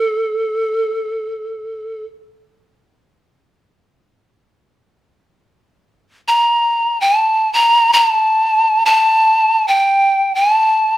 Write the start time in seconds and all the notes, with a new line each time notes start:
Already playing: A4
6.28 A#5
7.01 A5
7.53 A#5
7.93 A#5
8.06 A5
8.86 A5
9.68 G5
10.35 G#5
10.54 A5